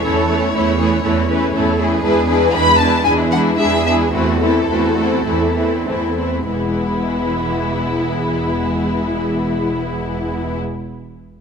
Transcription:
<<
  \new Staff \with { instrumentName = "Violin section" } { \time 4/4 \key e \major \tempo 4 = 104 cis''2.~ cis''8 r8 | b'8 b'8 b''8 a''8 gis''8 fis''8 e''8 e''8 | a'2.~ a'8 r8 | e'1~ |
e'1 | }
  \new Staff \with { instrumentName = "Cello section" } { \time 4/4 \key e \major a'4 e'8 gis'8 a'8 b'8 a'8 gis'8~ | gis'4 b'4 e'4 gis'4 | fis'8 e'8 fis'4 e'4 c'8 r8 | e,1~ |
e,1 | }
  \new Staff \with { instrumentName = "Violin section" } { \time 4/4 \key e \major <cis' e'>8 <cis' e'>8 <cis' e'>8 <cis' e'>8 <cis' e'>8 <cis' e'>8 <cis' e'>8 <cis' e'>8 | <d' e'>8 <d' e'>8 <d' e'>8 <d' e'>8 <d' e'>8 <d' e'>8 <d' e'>8 <d' e'>8 | <c' e'>8 <c' e'>8 <c' e'>8 <c' e'>8 <c' e'>8 <c' e'>8 <c' e'>8 <c' e'>8 | <b e'>1~ |
<b e'>1 | }
  \new Staff \with { instrumentName = "Viola section" } { \clef bass \time 4/4 \key e \major <e a>8 <e a>8 <e a>8 <e a>8 <e a>8 <e a>8 <e a>8 <e a>8 | <e gis>8 <e gis>8 <e gis>8 <e gis>8 <e gis>8 <e gis>8 <e gis>8 <e gis>8 | <e a>8 <e a>8 <e a>8 <e a>8 <e a>8 <e a>8 <e a>8 <e a>8 | <e gis>1~ |
<e gis>1 | }
  \new Staff \with { instrumentName = "Double bass section" } { \clef bass \time 4/4 \key e \major e,4 e,4 e,4 e,4 | e,4 e,4 e,4 e,4 | e,4 e,4 e,4 e,4 | e,,1~ |
e,,1 | }
>>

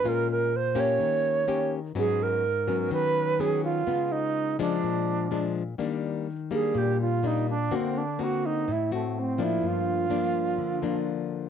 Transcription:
<<
  \new Staff \with { instrumentName = "Alto flute" } { \time 4/4 \key ais \phrygian \tempo 4 = 125 ais'8 ais'8 bis'8 cis''2 r8 | gis'8 ais'4. b'4 gis'8 eis'8~ | eis'8 dis'4 d'2 r8 | \key ees \major r4. aes'8 g'8 f'8 ees'8 d'8 |
c'8 d'8 fis'8 ees'8 fes'8 a8 c'8 fes'8 | f'2. r4 | }
  \new Staff \with { instrumentName = "Nylon-string guitar" } { \time 4/4 \key ais \phrygian << { <gis cis' eis'>4 r8 <ais cis' g'>4. <ais cis' g'>8 r8 | <fis b cis'>4 r8 <fis b cis'>4. <fis b cis'>4 | <gis b eis'>4. <eis gis d'>4. <eis gis d'>8 r8 | \key ees \major <g bes d'>4 r8 <g bes d'>4. <g bes d'>8 r8 |
<bes c' fis'>8 r8 <bes c' fis'>4 r8 <c' fis'>4 <f bes d'>8~ | <f bes d'>4 <f bes d'>4. <f bes d'>4. | } \\ { ais,2 dis2 | gis,2 dis2 | cis2 ais,2 | ees2 bes,2 |
d2 a,2 | g,2 d2 | } >> }
>>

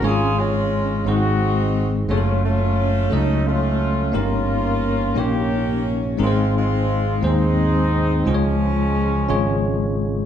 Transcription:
<<
  \new Staff \with { instrumentName = "Tine electric piano" } { \time 6/8 \key des \major \tempo 4. = 58 <aes des' ees' f' aes' des''>4 r8 <aes c' ees' aes' c''>4 r8 | <ges a des' aes' a' des''>4 r8 <ges a des' a' ees''>4 r8 | <bes des' ees' g' bes'>4 r8 <bes des' ees' g' des''>4 r8 | <aes c' ees' aes' bes' c''>4 r8 <aes c' ees' aes' c''>4 r8 |
<aes des' f' aes' c'' des''>4 r8 <aes des' f' aes' des''>4 r8 | }
  \new Staff \with { instrumentName = "Tine electric piano" } { \clef bass \time 6/8 \key des \major aes,4. aes,4. | r2. | g,4. r4. | aes,4. r4. |
des4. r4. | }
  \new Staff \with { instrumentName = "Horn section" } { \time 6/8 \key des \major << { aes'8 f'4 ges'4 r8 | f'8 f'4 ees'8 f'4 | f'4. g'4 r8 | f'8 f'4 ees'4. |
des'2~ des'8 r8 | } \\ { <des' f'>8 <aes des'>4 <c' ees'>4. | <a des'>8 <a des'>4. <a des'>4 | <bes des'>4. <bes des'>4. | <aes c'>8 <aes c'>4 <aes c'>4. |
<f aes>2~ <f aes>8 r8 | } >> }
  \new Staff \with { instrumentName = "Fingered electric bass" } { \clef bass \time 6/8 \key des \major aes,,4. aes,,4. | ges,,4. des,4. | g,,4. bes,,4. | aes,,4. ees,4. |
des,4. aes,,4. | }
>>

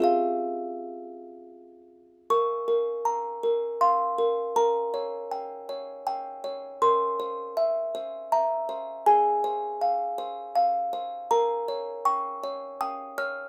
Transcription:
\new Staff \with { instrumentName = "Music box" } { \time 3/4 \key f \minor \tempo 4 = 80 << { f''2~ f''8 r8 | des'''2 c'''4 | bes''2 g''4 | c'''2 bes''4 |
aes''2 f''4 | bes''4 des'''4 ees'''8 f'''8 | } \\ { <f' aes' c''>2. | bes'8 bes'8 bes''8 bes'8 f''8 bes'8 | bes'8 des''8 g''8 des''4 des''8 | bes'8 c''8 e''8 c''8 e''8 c''8 |
aes'8 c''8 f''8 c''4 c''8 | bes'8 des''8 g''8 des''8 g''8 des''8 | } >> }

